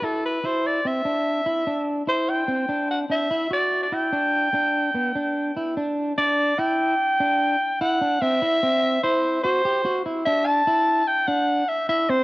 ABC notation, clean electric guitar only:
X:1
M:5/4
L:1/8
Q:1/4=147
K:Clyd
V:1 name="Clean electric guitar"
E2 E2 C D2 E D2 | E2 C D2 D E F2 E | D2 D2 B, D2 E D2 | D2 E2 z D2 z E D |
C E C2 E2 F G F E | D2 E2 z D2 z E C |]